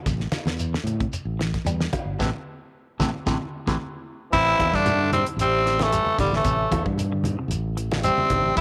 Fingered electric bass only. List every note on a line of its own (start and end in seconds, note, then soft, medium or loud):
0.06 0.26 A1 medium
0.46 0.76 E2 medium
0.84 1.05 A2 medium
1.25 1.56 A1 medium
1.65 1.86 E2 medium
2.05 2.16 G1 medium
2.19 2.31 A1 medium
2.99 3.10 A1 medium
3.26 3.37 A1 medium
3.67 3.76 A1 medium
4.32 4.53 A1 medium
4.59 4.70 E2 medium
4.73 5.23 G2 medium
5.37 5.97 A1 medium
6.18 6.29 G1 medium
6.31 6.41 A1 medium
6.44 6.65 A1 medium
6.71 6.82 E2 medium
6.85 7.35 G2 medium
7.48 8.09 A1 medium
8.30 8.41 G1 medium
8.43 8.53 A1 medium
8.56 8.61 A1 medium